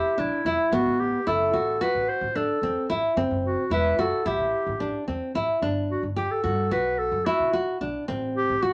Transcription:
Already playing: nylon-string guitar E4, clarinet G4
0.17 upright bass B1, nylon-string guitar D4, clarinet E4
0.45 upright bass E1, nylon-string guitar E4
0.72 upright bass A1, nylon-string guitar B3, clarinet F#4
0.86 upright bass A1
1.00 clarinet G4
1.27 upright bass F#1, nylon-string guitar E4, clarinet A4
1.53 upright bass A1, nylon-string guitar F#4
1.81 nylon-string guitar F#4, clarinet B4
1.95 upright bass A1
2.09 clarinet C5
2.21 upright bass A1
2.35 nylon-string guitar D4, clarinet A4
2.62 upright bass E2, nylon-string guitar C4
2.90 upright bass A1, nylon-string guitar E4
3.17 upright bass F#1, nylon-string guitar C4
3.31 upright bass F#1
3.45 clarinet F#4
3.70 upright bass E1, nylon-string guitar E4, clarinet B4
3.98 upright bass F#1, nylon-string guitar F#4, clarinet A4
4.25 upright bass A1, nylon-string guitar E4, clarinet G4
4.39 upright bass A1
4.67 upright bass A1
4.80 nylon-string guitar D4
5.08 upright bass E2, nylon-string guitar C4
5.35 upright bass A1, nylon-string guitar E4
5.62 upright bass G1, nylon-string guitar D4
5.91 clarinet F#4
6.03 upright bass G1
6.16 nylon-string guitar G4, clarinet G4
6.31 clarinet A4
6.44 upright bass G2, nylon-string guitar F#4
6.71 upright bass B1, nylon-string guitar F#4, clarinet B4
6.98 clarinet A4
7.12 upright bass F#2
7.26 nylon-string guitar E4, clarinet F#4
7.39 upright bass B2
7.53 nylon-string guitar F#4
7.81 upright bass B1, nylon-string guitar D4
8.08 upright bass A1, nylon-string guitar C4
8.36 clarinet G4
8.49 upright bass A1
8.62 clarinet F#4, nylon-string guitar F#4

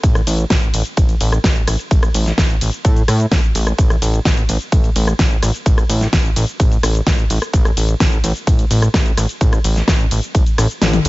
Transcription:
0.03 analog synth bass A1, kick, closed hi-hat, ride, shaker
0.15 cross-stick, closed hi-hat, shaker
0.27 analog synth bass A1, open hi-hat, ride, shaker
0.39 closed hi-hat, shaker
0.50 analog synth bass A1, kick, snare, closed hi-hat, ride, shaker
0.62 closed hi-hat, shaker
0.74 analog synth bass A1, open hi-hat, ride, shaker
0.85 closed hi-hat, shaker
0.97 analog synth bass A1, kick, closed hi-hat, ride, shaker
1.09 closed hi-hat, shaker
1.21 analog synth bass A1, open hi-hat, ride, shaker
1.32 cross-stick, closed hi-hat, shaker
1.44 analog synth bass A1, kick, snare, closed hi-hat, ride, shaker
1.56 closed hi-hat, shaker
1.68 analog synth bass A1, cross-stick, open hi-hat, ride, shaker
1.79 closed hi-hat, shaker
1.91 analog synth bass A1, kick, closed hi-hat, ride, shaker
2.03 cross-stick, closed hi-hat, shaker
2.14 analog synth bass A1, open hi-hat, ride, shaker
2.26 snare, closed hi-hat, shaker
2.38 analog synth bass A1, kick, snare, closed hi-hat, ride, shaker
2.50 closed hi-hat, shaker
2.61 analog synth bass A1, open hi-hat, ride, shaker
2.73 closed hi-hat, shaker
2.85 analog synth bass A2, kick, closed hi-hat, ride, shaker
2.96 closed hi-hat, shaker
3.08 analog synth bass A2, cross-stick, open hi-hat, ride, shaker
3.20 closed hi-hat, shaker
3.32 analog synth bass A1, kick, snare, closed hi-hat, ride, shaker
3.43 closed hi-hat, shaker
3.55 analog synth bass A1, open hi-hat, ride, shaker
3.67 cross-stick, closed hi-hat, shaker
3.78 analog synth bass A1, kick, closed hi-hat, ride, shaker
3.90 cross-stick, closed hi-hat, shaker
4.02 analog synth bass A1, open hi-hat, ride, shaker
4.14 closed hi-hat, shaker
4.25 analog synth bass A1, kick, snare, closed hi-hat, ride, shaker
4.37 closed hi-hat, shaker
4.49 analog synth bass A1, open hi-hat, ride, shaker
4.61 closed hi-hat, shaker
4.72 analog synth bass A1, kick, closed hi-hat, ride, shaker
4.84 closed hi-hat, shaker
4.96 analog synth bass A1, open hi-hat, ride, shaker
5.08 cross-stick, closed hi-hat, shaker
5.19 analog synth bass A1, kick, snare, closed hi-hat, ride, shaker
5.31 closed hi-hat, shaker
5.42 analog synth bass A1, cross-stick, open hi-hat, ride, shaker
5.54 closed hi-hat, shaker
5.66 analog synth bass A1, kick, closed hi-hat, ride, shaker
5.78 cross-stick, closed hi-hat, shaker
5.89 analog synth bass A1, open hi-hat, ride, shaker
6.01 snare, closed hi-hat, shaker
6.13 analog synth bass A1, kick, snare, closed hi-hat, ride, shaker
6.25 closed hi-hat, shaker
6.36 analog synth bass A1, open hi-hat, ride, shaker
6.48 closed hi-hat, shaker
6.60 analog synth bass A1, kick, closed hi-hat, ride, shaker
6.72 closed hi-hat, shaker
6.83 analog synth bass A1, cross-stick, open hi-hat, ride, shaker
6.95 closed hi-hat, shaker
7.07 analog synth bass A1, kick, snare, closed hi-hat, ride, shaker
7.18 closed hi-hat, shaker
7.30 analog synth bass A1, open hi-hat, ride, shaker
7.42 cross-stick, closed hi-hat, shaker
7.53 analog synth bass A1, kick, closed hi-hat, ride, shaker
7.65 cross-stick, closed hi-hat, shaker
7.77 analog synth bass A1, open hi-hat, ride, shaker
7.89 closed hi-hat, shaker
8.00 analog synth bass A1, kick, snare, closed hi-hat, ride, shaker
8.12 closed hi-hat, shaker
8.24 analog synth bass A1, open hi-hat, ride, shaker
8.36 closed hi-hat, shaker
8.47 analog synth bass A1, kick, closed hi-hat, ride, shaker
8.59 closed hi-hat, shaker
8.71 analog synth bass A1, open hi-hat, ride, shaker
8.82 cross-stick, closed hi-hat, shaker
8.94 analog synth bass A1, kick, snare, closed hi-hat, ride, shaker
9.06 closed hi-hat, shaker
9.17 analog synth bass A1, cross-stick, open hi-hat, ride, shaker
9.29 closed hi-hat, shaker
9.41 analog synth bass A1, kick, closed hi-hat, ride, shaker
9.53 cross-stick, closed hi-hat, shaker
9.64 analog synth bass A1, open hi-hat, ride, shaker
9.76 snare, closed hi-hat, shaker
9.88 analog synth bass A1, kick, snare, closed hi-hat, ride, shaker
10.00 closed hi-hat, shaker
10.11 analog synth bass A1, open hi-hat, ride, shaker
10.23 closed hi-hat, shaker
10.35 analog synth bass A1, kick, closed hi-hat, ride, shaker
10.46 closed hi-hat, shaker
10.58 analog synth bass A1, cross-stick, open hi-hat, ride, shaker
10.70 closed hi-hat, shaker
10.82 analog synth bass A1, snare, closed hi-hat, high tom, ride, shaker
10.93 closed hi-hat, high tom, shaker
11.05 analog synth bass A1, open hi-hat, ride

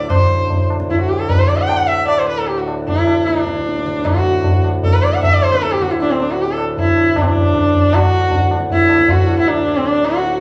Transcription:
0.09 harmonium D2 A2, sarangi C5, tabla na, tabla ge
0.50 tabla tin, tabla ge
0.70 tabla na
0.80 tabla ke
0.90 sarangi E4, tabla tin, tabla ge
1.00 sarangi F#4
1.09 sarangi G4
1.19 sarangi A4
1.29 sarangi B4, tabla tin, tabla ge
1.39 sarangi C5
1.48 sarangi D5, tabla na
1.58 sarangi F#5
1.68 sarangi G5, tabla na
1.77 sarangi F#5
1.87 sarangi E5
2.08 sarangi D5, tabla na
2.18 sarangi C5
2.28 sarangi B4
2.38 sarangi A4
2.47 sarangi G4, tabla tin
2.58 sarangi F#4
2.68 tabla na
2.88 sarangi E4, tabla tin, tabla ge
3.07 tabla na
3.27 sarangi D4, tabla te
3.37 tabla te
3.47 tabla ke
3.57 tabla te
3.66 tabla te
3.76 tabla te
3.86 tabla ke
3.96 tabla te
4.05 sarangi F#4, tabla na, tabla ge
4.44 tabla tin, tabla ge
4.64 tabla na
4.83 sarangi A4, tabla tin, tabla ge
4.94 sarangi B4
5.03 sarangi D5
5.14 sarangi F#5
5.23 sarangi E5, tabla tin, tabla ge
5.33 sarangi D5
5.42 sarangi C5, tabla na
5.52 sarangi B4, tabla ke
5.62 sarangi A4, tabla te
5.72 sarangi G4, tabla te
5.82 sarangi F#4, tabla ke
5.91 sarangi E4, tabla te
5.98 sarangi D4 E4, tabla te
6.11 sarangi C4
6.20 sarangi D4, tabla te
6.32 sarangi F#4
6.39 sarangi G4, tabla tin
6.52 sarangi A4
6.58 tabla na
6.77 sarangi E4, tabla tin, tabla ge
6.97 tabla na
7.16 sarangi D4, tabla na, tabla ge
7.22 sarangi C4
7.28 sarangi D4
7.35 tabla ge
7.55 tabla na, tabla ge
7.74 tabla ge
7.93 harmonium D2 A2, sarangi F#4, tabla na, tabla ge
8.31 tabla tin, tabla ge
8.51 tabla na
8.60 tabla ke
8.70 sarangi E4, tabla tin, tabla ge
8.89 tabla na
8.99 tabla ke
9.08 sarangi F#4, tabla tin, tabla ge
9.27 tabla na
9.37 sarangi E4, tabla ke
9.47 sarangi D4, tabla na
9.77 sarangi C4
9.85 sarangi D4, tabla te
10.05 sarangi F#4, tabla te
10.24 tabla tin

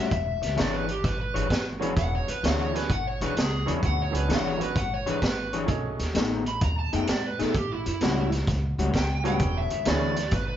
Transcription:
Already playing: upright bass A2, clean electric guitar A2 G3 C#4 F#4
0.00 electric slide guitar E5
0.11 upright bass E1, muted clean electric guitar stroke, kick, closed hi-hat
0.42 upright bass C#2, muted clean electric guitar stroke, snare, closed hi-hat
0.56 upright bass G#1, clean electric guitar E3 D4 G#4 C#5, electric slide guitar D5, snare, closed hi-hat
0.74 electric slide guitar B4
0.88 electric slide guitar G4, muted clean electric guitar stroke, closed hi-hat
1.04 upright bass G#1, electric slide guitar B4, muted clean electric guitar stroke, kick, snare, closed hi-hat
1.21 electric slide guitar B4
1.34 upright bass G#1, clean electric guitar E3 D4 G#4 C#5, closed hi-hat
1.50 upright bass G#1, muted clean electric guitar stroke, kick, snare, closed hi-hat
1.80 clean electric guitar E3 D4 G#4 C#5, upright piano F#3 B3 C#4 D4 G#4, closed hi-hat
1.96 upright bass E1, electric slide guitar F#5, muted clean electric guitar stroke, kick, closed hi-hat
2.15 electric slide guitar C#5
2.28 upright bass G#1, electric slide guitar B4, muted clean electric guitar stroke, closed hi-hat
2.43 upright bass D2, clean electric guitar E3 D4 G#4 C#5, electric slide guitar F#5, snare, closed hi-hat
2.59 electric slide guitar C#5
2.74 upright piano F#3 B3 C#4 D4 G#4, electric slide guitar B4, muted clean electric guitar stroke, snare, closed hi-hat
2.90 upright bass G#1, electric slide guitar F#5, muted clean electric guitar stroke, kick, closed hi-hat
3.07 electric slide guitar C#5
3.21 upright bass B1, clean electric guitar E3 D4 G#4 C#5, electric slide guitar B4, closed hi-hat
3.36 upright bass C#2, electric slide guitar G#4, muted clean electric guitar stroke, snare, closed hi-hat
3.66 upright bass E2, clean electric guitar E3 D4 G#4 C#5, upright piano F#3 B3 C#4 D4 G#4, closed hi-hat
3.83 upright bass D2, electric slide guitar F#5, muted clean electric guitar stroke, kick, closed hi-hat
4.02 electric slide guitar C#5
4.11 upright bass C#2, upright piano F#3 B3 C#4 D4 G#4, muted clean electric guitar stroke, closed hi-hat
4.17 electric slide guitar B4
4.28 upright bass G#1, clean electric guitar E3 D4 G#4 C#5, snare, closed hi-hat
4.33 electric slide guitar F#5
4.47 electric slide guitar C#5
4.58 upright piano F#3 B3 C#4 D4 F#4, muted clean electric guitar stroke, closed hi-hat
4.63 electric slide guitar B4
4.75 upright bass G#1, electric slide guitar F#5, muted clean electric guitar stroke, kick, closed hi-hat
4.94 electric slide guitar C#5
5.06 upright bass G#1, clean electric guitar E3 D4 G#4 C#5, electric slide guitar B4, closed hi-hat
5.21 upright bass G#1, electric slide guitar B4, muted clean electric guitar stroke, kick, snare, closed hi-hat
5.53 clean electric guitar E3 D4 G#4 C#5, closed hi-hat
5.66 upright bass B1, upright piano F#3 A3 C#4 D#4 G#4, muted clean electric guitar stroke, kick, closed hi-hat
5.98 upright bass D#2, muted clean electric guitar stroke, snare, closed hi-hat
6.14 upright bass A1, clean electric guitar B2 A3 D#4 G#4, snare, closed hi-hat
6.46 electric slide guitar B5, muted clean electric guitar stroke, closed hi-hat
6.61 upright bass D#2, electric slide guitar A#5, muted clean electric guitar stroke, kick, closed hi-hat
6.79 electric slide guitar A5
6.93 upright bass F#2, clean electric guitar B2 A3 D#4 G#4, electric slide guitar G5, closed hi-hat
7.07 upright bass G#2, electric slide guitar D5, muted clean electric guitar stroke, snare, closed hi-hat
7.26 electric slide guitar B4
7.39 upright bass B2, clean electric guitar B2 A3 D#4 G#4, electric slide guitar A4, snare, closed hi-hat
7.54 upright bass A1, electric slide guitar G4, muted clean electric guitar stroke, kick, closed hi-hat
7.72 electric slide guitar E4
7.86 upright bass F#2, electric slide guitar E4, muted clean electric guitar stroke, closed hi-hat
8.01 upright bass C#2, clean electric guitar A2 G3 C#4 F#4, snare, closed hi-hat
8.32 muted clean electric guitar stroke, snare, closed hi-hat
8.47 upright bass C#2, muted clean electric guitar stroke, kick, snare, closed hi-hat
8.78 upright bass C#2, clean electric guitar A2 G3 C#4 F#4, closed hi-hat
8.94 upright bass C#2, electric slide guitar G5, muted clean electric guitar stroke, kick, snare, closed hi-hat
9.24 clean electric guitar A2 G3 C#4 F#4, upright piano F#3 B3 C#4 D4 G#4, electric slide guitar G5, closed hi-hat
9.39 upright bass E1, muted clean electric guitar stroke, kick, closed hi-hat
9.57 electric slide guitar E5
9.70 upright bass G#1, muted clean electric guitar stroke, closed hi-hat
9.85 upright bass D2, clean electric guitar E3 D4 G#4 C#5, upright piano F#3 B3 C#4 D4 G#4, electric slide guitar D5, snare, closed hi-hat
10.16 muted clean electric guitar stroke, snare, closed hi-hat
10.31 upright bass G#1, electric slide guitar B4, muted clean electric guitar stroke, kick, snare, closed hi-hat
10.48 electric slide guitar B4

